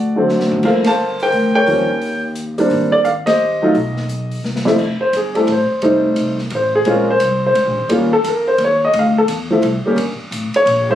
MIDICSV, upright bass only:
0, 0, Header, 1, 3, 480
1, 0, Start_track
1, 0, Tempo, 346021
1, 878, Time_signature, 3, 2, 24, 8
1, 15190, End_track
2, 0, Start_track
2, 0, Title_t, "Upright bass"
2, 0, Program_c, 0, 32
2, 0, Note_on_c, 0, 38, 92
2, 820, Note_off_c, 0, 38, 0
2, 877, Note_on_c, 0, 31, 84
2, 1782, Note_off_c, 0, 31, 0
2, 1838, Note_on_c, 0, 38, 75
2, 2284, Note_off_c, 0, 38, 0
2, 2309, Note_on_c, 0, 39, 94
2, 3697, Note_off_c, 0, 39, 0
2, 3758, Note_on_c, 0, 32, 92
2, 5141, Note_off_c, 0, 32, 0
2, 5198, Note_on_c, 0, 35, 85
2, 6100, Note_off_c, 0, 35, 0
2, 6161, Note_on_c, 0, 36, 79
2, 6604, Note_off_c, 0, 36, 0
2, 6635, Note_on_c, 0, 29, 83
2, 6918, Note_off_c, 0, 29, 0
2, 7111, Note_on_c, 0, 31, 81
2, 7578, Note_off_c, 0, 31, 0
2, 7588, Note_on_c, 0, 33, 90
2, 7875, Note_off_c, 0, 33, 0
2, 8082, Note_on_c, 0, 29, 83
2, 8544, Note_off_c, 0, 29, 0
2, 8555, Note_on_c, 0, 36, 83
2, 9020, Note_off_c, 0, 36, 0
2, 9033, Note_on_c, 0, 33, 93
2, 9499, Note_off_c, 0, 33, 0
2, 9512, Note_on_c, 0, 34, 84
2, 9978, Note_off_c, 0, 34, 0
2, 9997, Note_on_c, 0, 36, 89
2, 10461, Note_off_c, 0, 36, 0
2, 10474, Note_on_c, 0, 37, 87
2, 10629, Note_off_c, 0, 37, 0
2, 10629, Note_on_c, 0, 34, 61
2, 10776, Note_off_c, 0, 34, 0
2, 10785, Note_on_c, 0, 32, 64
2, 10938, Note_off_c, 0, 32, 0
2, 10948, Note_on_c, 0, 39, 90
2, 11417, Note_off_c, 0, 39, 0
2, 11426, Note_on_c, 0, 41, 76
2, 11896, Note_off_c, 0, 41, 0
2, 11903, Note_on_c, 0, 39, 84
2, 12374, Note_off_c, 0, 39, 0
2, 12395, Note_on_c, 0, 38, 94
2, 12861, Note_off_c, 0, 38, 0
2, 12875, Note_on_c, 0, 40, 88
2, 13338, Note_off_c, 0, 40, 0
2, 13346, Note_on_c, 0, 36, 90
2, 13634, Note_off_c, 0, 36, 0
2, 13817, Note_on_c, 0, 31, 82
2, 14110, Note_off_c, 0, 31, 0
2, 14303, Note_on_c, 0, 33, 78
2, 14593, Note_off_c, 0, 33, 0
2, 14782, Note_on_c, 0, 34, 89
2, 15190, Note_off_c, 0, 34, 0
2, 15190, End_track
3, 0, Start_track
3, 0, Title_t, "Muted upright bass strokes"
3, 6945, Note_on_c, 9, 29, 36
3, 7084, Note_off_c, 9, 29, 0
3, 7907, Note_on_c, 9, 29, 40
3, 8046, Note_off_c, 9, 29, 0
3, 13652, Note_on_c, 9, 29, 41
3, 13791, Note_off_c, 9, 29, 0
3, 14122, Note_on_c, 9, 29, 38
3, 14261, Note_off_c, 9, 29, 0
3, 14614, Note_on_c, 9, 29, 37
3, 14753, Note_off_c, 9, 29, 0
3, 15190, End_track
0, 0, End_of_file